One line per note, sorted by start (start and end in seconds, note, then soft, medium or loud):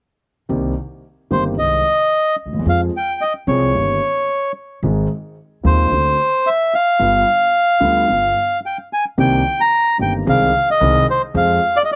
0.49 0.72 C2 medium
0.49 0.72 C3 medium
0.49 0.72 D#3 soft
0.49 0.72 A#3 soft
0.49 0.72 C4 soft
0.49 0.72 G4 medium
1.31 1.54 G1 medium
1.31 1.54 G2 medium
1.31 1.54 D#3 soft
1.31 1.54 A#3 soft
1.31 1.54 C4 soft
1.31 1.54 G4 medium
1.31 1.44 C5 medium
1.57 1.81 C2 soft
1.57 1.81 C3 soft
1.57 1.80 D#3 soft
1.57 1.81 G#3 soft
1.57 1.81 C4 soft
1.57 1.81 G#4 soft
1.57 2.36 D#5 medium
2.46 2.52 D2 soft
2.46 2.53 D2 soft
2.53 2.59 D#2 soft
2.53 2.60 D#2 soft
2.59 2.65 E2 medium
2.59 2.66 E2 medium
2.65 2.89 F2 medium
2.65 2.89 F3 medium
2.65 2.89 G#3 soft
2.65 2.89 C4 soft
2.65 2.89 G#4 medium
2.65 2.81 F5 medium
2.97 3.23 G5 medium
3.21 3.33 D#5 medium
3.47 3.70 C2 medium
3.47 3.70 C3 medium
3.47 3.70 F3 medium
3.47 3.70 G#3 soft
3.47 3.70 C4 soft
3.47 3.71 G#4 medium
3.47 4.52 C#5 medium
3.74 3.97 G1 soft
3.74 3.98 G1 soft
3.74 3.97 G2 soft
3.74 3.97 D#3 soft
3.74 3.97 A#3 soft
3.74 3.98 G4 soft
4.83 5.06 G#1 medium
4.83 5.06 G#2 medium
4.83 5.06 D#3 medium
4.83 5.06 G#3 soft
4.83 5.06 C4 soft
4.83 5.06 G#4 medium
5.63 5.87 D#1 medium
5.63 5.87 D#2 medium
5.63 5.87 D#3 medium
5.63 5.87 G#3 soft
5.63 5.87 C4 soft
5.63 5.87 G#4 medium
5.63 6.49 C5 medium
5.90 6.14 D2 soft
5.90 6.14 D3 soft
5.90 6.14 A3 soft
5.90 6.14 C4 soft
5.90 6.14 F#4 soft
6.47 6.74 E5 medium
6.74 8.60 F5 medium
6.99 7.22 G1 medium
6.99 7.23 G1 medium
6.99 7.23 G2 medium
6.99 7.22 D3 medium
6.99 7.23 G3 soft
6.99 7.22 B3 soft
6.99 7.23 F4 medium
7.80 8.04 D2 medium
7.80 8.04 D3 medium
7.80 8.04 G3 medium
7.80 8.04 B3 medium
7.80 8.04 F4 medium
8.08 8.31 G1 soft
8.08 8.32 G1 soft
8.08 8.31 G2 soft
8.08 8.31 D3 soft
8.08 8.31 G3 soft
8.08 8.31 B3 soft
8.08 8.32 F4 soft
8.66 8.78 G5 medium
8.93 9.05 G#5 medium
9.18 9.41 C2 medium
9.18 9.41 C3 medium
9.18 9.40 D#3 medium
9.18 9.40 A#3 medium
9.18 9.41 C4 medium
9.18 9.40 G4 medium
9.18 9.61 G5 medium
9.61 9.97 A#5 medium
9.99 10.22 G1 soft
9.99 10.22 G1 medium
9.99 10.22 G2 soft
9.99 10.22 D#3 soft
9.99 10.22 A#3 soft
9.99 10.22 C4 soft
9.99 10.22 G4 soft
9.99 10.13 G5 medium
10.26 10.49 C2 medium
10.26 10.49 C3 medium
10.26 10.49 D#3 medium
10.26 10.49 G#3 soft
10.26 10.49 C4 medium
10.26 10.49 G#4 medium
10.26 10.69 F5 medium
10.71 11.07 D#5 medium
10.81 11.03 C2 medium
10.81 11.04 C3 medium
10.81 11.03 D#3 medium
10.81 11.03 G#3 medium
10.81 11.03 C4 medium
10.81 11.03 G#4 medium
11.10 11.22 C5 medium
11.34 11.57 F2 medium
11.34 11.57 F3 medium
11.34 11.57 G#3 medium
11.34 11.57 C4 medium
11.34 11.57 G#4 medium
11.34 11.78 F5 medium
11.76 11.82 D5 medium
11.85 11.90 D#5 medium
11.92 11.95 D5 medium